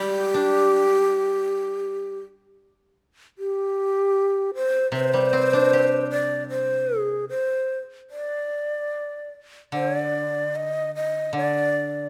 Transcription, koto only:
0.00 2.22 G3 soft
0.00 1.08 G#3 soft
0.34 1.85 D4 soft
4.92 7.29 C3 medium
5.14 6.71 G3 soft
5.33 6.91 C4 soft
5.53 7.11 D4 soft
5.73 7.31 G4 soft
9.72 11.32 D3 soft
11.33 12.09 D3 soft

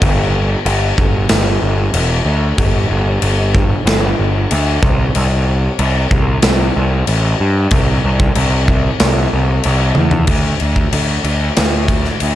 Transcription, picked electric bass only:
0.02 0.54 G1 loud
0.66 0.92 G1 loud
0.98 1.24 G1 medium
1.30 1.56 G1 loud
1.62 1.88 G1 medium
1.94 2.20 E1 loud
2.25 2.52 D2 medium
2.58 2.84 G1 loud
2.90 3.16 G1 loud
3.22 3.74 G1 loud
3.86 4.12 G1 medium
4.19 4.45 G1 medium
4.52 4.78 D2 loud
4.82 5.09 C2 medium
5.16 5.67 C2 loud
5.79 6.05 C2 loud
6.11 6.37 C2 medium
6.43 6.69 C2 loud
6.76 7.02 C2 medium
7.08 7.34 A1 medium
7.40 7.66 G2 medium
7.72 7.98 C2 loud
8.04 8.30 C2 medium
8.36 8.88 C2 loud
9.01 9.26 C2 medium
9.33 9.59 C2 medium
9.65 9.91 C2 loud
9.97 10.23 E2 medium
10.28 10.53 D2 medium
10.61 10.86 D2 medium
10.93 11.18 D2 medium
11.24 11.49 D2 medium
11.58 12.08 D2 loud
12.22 12.35 D2 medium

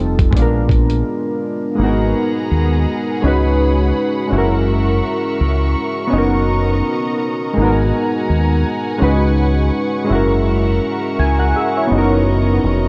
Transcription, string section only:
1.78 3.21 B3 medium
1.78 4.28 G#4 medium
1.78 6.08 F#5 medium
1.78 3.21 A#5 medium
3.23 4.30 C#5 medium
3.23 4.30 B5 medium
4.31 6.10 A#4 medium
4.31 6.10 E5 medium
4.31 7.53 C#6 medium
6.11 7.55 B3 medium
6.11 7.55 D#5 medium
6.11 7.55 A#5 medium
7.56 11.86 F#5 medium
7.56 10.07 G#5 medium
7.56 8.99 A#5 medium
9.01 10.08 B4 medium
9.01 12.88 C#6 medium
10.10 11.88 A#4 medium
10.10 11.88 E5 medium
11.90 12.88 B3 medium
11.90 12.88 D#5 medium
11.90 12.88 A#5 medium

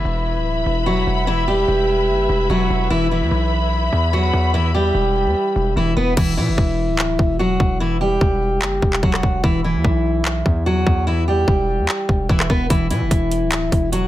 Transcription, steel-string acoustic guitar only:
0.00 0.83 E3 medium
0.00 0.82 E4 medium
0.86 1.25 F#3 medium
0.86 1.25 F#4 medium
1.27 1.44 E3 medium
1.27 1.43 E4 medium
1.48 2.46 G3 medium
1.48 2.46 G4 medium
2.50 2.89 F#3 medium
2.50 2.88 F#4 medium
2.90 3.07 E3 medium
2.90 3.06 E4 medium
3.11 4.10 E3 medium
3.11 4.09 E4 medium
4.13 4.52 F#3 medium
4.13 4.51 F#4 medium
4.54 4.70 E3 medium
4.54 4.70 E4 medium
4.74 5.73 G3 medium
4.74 5.72 G4 medium
5.77 5.93 E3 medium
5.77 5.92 E4 medium
5.97 6.13 B3 medium
5.97 6.13 B4 medium
6.17 6.33 E3 medium
6.17 6.33 E4 medium
6.37 7.36 E3 medium
6.37 7.35 E4 medium
7.39 7.78 F#3 medium
7.39 7.78 F#4 medium
7.80 7.97 E3 medium
7.80 7.96 E4 medium
8.01 8.99 G3 medium
8.01 8.99 G4 medium
9.03 9.42 F#3 medium
9.03 9.41 F#4 medium
9.44 9.60 E3 medium
9.44 9.59 E4 medium
9.64 10.63 E3 medium
9.64 10.62 E4 medium
10.66 11.05 F#3 medium
10.66 11.05 F#4 medium
11.07 11.23 E3 medium
11.07 11.23 E4 medium
11.28 12.26 G3 medium
11.28 12.26 G4 medium
12.30 12.46 E3 medium
12.30 12.46 E4 medium
12.50 12.66 B3 medium
12.50 12.66 B4 medium
12.70 12.86 E3 medium
12.70 12.86 E4 medium
12.91 13.89 E3 medium
12.91 13.89 E4 medium
13.92 14.08 F#3 medium
13.92 14.08 F#4 medium

